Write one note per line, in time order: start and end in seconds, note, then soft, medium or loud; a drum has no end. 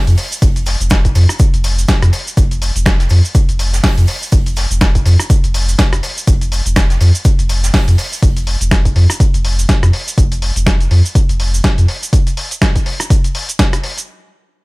0.07 0.15 F2 loud
0.07 closed hi-hat medium
0.07 shaker soft
0.18 open hi-hat medium
0.18 shaker medium
0.32 shaker medium
0.42 0.75 F1 loud
0.42 kick loud
0.42 closed hi-hat medium
0.42 shaker medium
0.56 closed hi-hat medium
0.56 shaker soft
0.66 snare soft
0.66 open hi-hat loud
0.66 shaker medium
0.80 1.11 F1 medium
0.80 closed hi-hat soft
0.80 shaker medium
0.90 kick loud
0.90 cross-stick medium
0.90 snare loud
0.90 closed hi-hat medium
0.90 shaker medium
0.91 shaker medium
1.05 kick medium
1.05 closed hi-hat medium
1.05 shaker soft
1.15 1.26 F2 medium
1.15 open hi-hat loud
1.15 shaker medium
1.29 cross-stick medium
1.29 shaker medium
1.39 kick loud
1.39 closed hi-hat medium
1.39 shaker medium
1.54 1.85 F1 medium
1.54 closed hi-hat medium
1.54 shaker soft
1.64 open hi-hat loud
1.64 shaker medium
1.79 shaker medium
1.88 kick loud
1.88 snare loud
1.88 closed hi-hat medium
1.88 shaker medium
2.02 2.10 F2 loud
2.02 cross-stick medium
2.02 closed hi-hat medium
2.02 shaker soft
2.13 open hi-hat loud
2.13 shaker medium
2.27 shaker medium
2.37 2.70 F1 loud
2.37 kick loud
2.37 closed hi-hat medium
2.37 shaker loud
2.37 shaker medium
2.51 closed hi-hat soft
2.51 shaker soft
2.62 open hi-hat loud
2.62 shaker medium
2.76 3.07 F1 medium
2.76 closed hi-hat soft
2.76 shaker medium
2.86 kick loud
2.86 cross-stick medium
2.86 snare loud
2.86 closed hi-hat medium
2.86 shaker medium
2.99 snare medium
2.99 closed hi-hat medium
2.99 shaker soft
3.09 3.21 F2 medium
3.09 open hi-hat loud
3.09 shaker medium
3.25 shaker medium
3.35 kick loud
3.35 closed hi-hat medium
3.35 shaker medium
3.49 3.80 F1 medium
3.49 closed hi-hat medium
3.49 shaker soft
3.59 open hi-hat loud
3.59 shaker medium
3.73 snare medium
3.73 shaker medium
3.84 kick loud
3.84 snare loud
3.84 closed hi-hat medium
3.84 open hi-hat medium
3.84 shaker medium
3.98 4.06 F2 loud
3.98 closed hi-hat medium
3.98 shaker soft
4.07 open hi-hat loud
4.07 shaker medium
4.22 shaker medium
4.32 4.65 F1 loud
4.32 kick loud
4.32 closed hi-hat medium
4.32 shaker medium
4.46 closed hi-hat medium
4.46 shaker soft
4.56 snare medium
4.56 open hi-hat loud
4.56 shaker medium
4.71 5.02 F1 medium
4.71 closed hi-hat soft
4.71 shaker medium
4.81 kick loud
4.81 cross-stick medium
4.81 snare loud
4.81 closed hi-hat medium
4.81 shaker medium
4.95 kick medium
4.95 closed hi-hat medium
4.95 shaker soft
5.06 5.16 F2 medium
5.06 open hi-hat loud
5.06 shaker medium
5.20 cross-stick medium
5.20 shaker medium
5.30 kick loud
5.30 closed hi-hat medium
5.30 shaker medium
5.44 5.75 F1 loud
5.44 closed hi-hat medium
5.44 shaker soft
5.54 open hi-hat loud
5.54 shaker medium
5.69 shaker medium
5.78 kick loud
5.78 snare loud
5.78 closed hi-hat medium
5.78 shaker medium
5.93 6.01 F1 loud
5.93 cross-stick medium
5.93 closed hi-hat medium
5.93 shaker soft
6.03 open hi-hat loud
6.03 shaker medium
6.17 shaker medium
6.27 6.61 F1 loud
6.27 kick loud
6.27 closed hi-hat medium
6.27 shaker medium
6.41 closed hi-hat medium
6.41 shaker soft
6.52 open hi-hat loud
6.52 shaker medium
6.66 6.97 F1 medium
6.66 closed hi-hat soft
6.66 shaker medium
6.76 kick loud
6.76 cross-stick medium
6.76 snare loud
6.76 closed hi-hat medium
6.76 shaker medium
6.90 snare medium
6.90 closed hi-hat medium
6.90 shaker soft
7.01 7.11 F2 medium
7.01 open hi-hat loud
7.01 shaker medium
7.15 shaker medium
7.25 kick loud
7.25 closed hi-hat medium
7.25 shaker medium
7.39 7.70 F1 medium
7.39 closed hi-hat medium
7.39 shaker soft
7.49 open hi-hat loud
7.49 shaker medium
7.63 snare medium
7.63 shaker medium
7.74 kick loud
7.74 snare loud
7.74 closed hi-hat medium
7.74 open hi-hat medium
7.74 shaker medium
7.88 7.96 F2 loud
7.88 closed hi-hat medium
7.88 shaker soft
7.98 open hi-hat loud
7.98 shaker medium
8.13 shaker medium
8.23 8.56 F1 loud
8.23 kick loud
8.23 closed hi-hat medium
8.23 shaker medium
8.37 closed hi-hat medium
8.37 shaker soft
8.47 open hi-hat loud
8.61 8.92 F1 medium
8.61 closed hi-hat soft
8.61 shaker medium
8.71 kick loud
8.71 cross-stick medium
8.71 snare loud
8.71 closed hi-hat medium
8.71 shaker medium
8.85 kick medium
8.85 closed hi-hat soft
8.85 shaker soft
8.96 9.06 F2 medium
8.96 open hi-hat medium
9.10 cross-stick medium
9.10 shaker medium
9.20 kick loud
9.20 closed hi-hat medium
9.20 shaker medium
9.34 9.65 F1 loud
9.34 closed hi-hat medium
9.34 shaker soft
9.45 open hi-hat loud
9.59 shaker medium
9.69 kick loud
9.69 snare loud
9.69 closed hi-hat medium
9.69 shaker medium
9.83 9.91 F2 loud
9.83 cross-stick medium
9.83 closed hi-hat medium
9.83 shaker soft
9.93 open hi-hat medium
10.08 shaker medium
10.18 10.51 F1 loud
10.18 kick loud
10.18 closed hi-hat medium
10.18 shaker medium
10.32 closed hi-hat medium
10.32 shaker soft
10.42 open hi-hat loud
10.56 10.87 F1 loud
10.56 closed hi-hat soft
10.56 shaker medium
10.66 kick loud
10.66 cross-stick medium
10.66 snare loud
10.66 closed hi-hat medium
10.66 shaker medium
10.80 closed hi-hat medium
10.80 shaker soft
10.91 11.02 F2 medium
10.91 open hi-hat medium
11.05 shaker medium
11.15 kick loud
11.15 closed hi-hat medium
11.15 shaker medium
11.29 11.60 F1 loud
11.29 closed hi-hat medium
11.29 shaker soft
11.40 open hi-hat loud
11.54 shaker medium
11.64 kick loud
11.64 snare loud
11.64 closed hi-hat medium
11.64 shaker medium
11.78 11.86 F2 loud
11.78 closed hi-hat medium
11.78 shaker soft
11.88 open hi-hat loud
12.03 shaker medium
12.13 kick loud
12.13 closed hi-hat medium
12.13 shaker medium
12.27 closed hi-hat medium
12.27 shaker soft
12.37 open hi-hat loud
12.51 closed hi-hat soft
12.51 shaker medium
12.62 kick loud
12.62 cross-stick medium
12.62 snare loud
12.62 closed hi-hat medium
12.62 shaker medium
12.76 kick medium
12.76 closed hi-hat medium
12.76 shaker soft
12.86 open hi-hat medium
13.00 cross-stick medium
13.00 closed hi-hat soft
13.00 shaker medium
13.10 kick loud
13.10 closed hi-hat medium
13.10 shaker medium
13.24 closed hi-hat medium
13.24 shaker soft
13.35 open hi-hat loud
13.49 closed hi-hat soft
13.49 shaker medium
13.59 kick loud
13.59 snare loud
13.59 closed hi-hat medium
13.59 shaker medium
13.73 cross-stick medium
13.73 closed hi-hat medium
13.73 shaker soft
13.84 open hi-hat medium
13.98 closed hi-hat soft
13.98 shaker medium